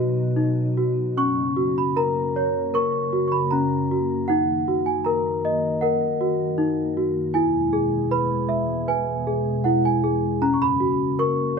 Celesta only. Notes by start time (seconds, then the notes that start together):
Already playing: F#4 B4 D#5 B5
0.36 D#4
0.77 F#4
1.17 C#4 C#6
1.57 F#4
1.78 B5
1.96 A#4 A#5
2.36 C#5
2.74 A#4 C#6
3.13 F#4
3.28 C#6
3.32 B5
3.51 C#4 A#5
3.91 F#4
4.28 D#4 F#5
4.68 F#4
4.86 G#5
5.05 A#4 A#5
5.45 D#5
5.81 A#4 F#5
6.21 F#4
6.58 D#4
6.97 F#4
7.34 E4 G#5
7.73 G#4
8.11 B4 B5
8.49 E5
8.88 B4 G#5
9.27 G#4
9.64 E4 F#5
9.85 G#5
10.04 G#4
10.42 C#4 A#5
10.54 C#6
10.62 B5
10.80 F#4
11.19 A#4 C#6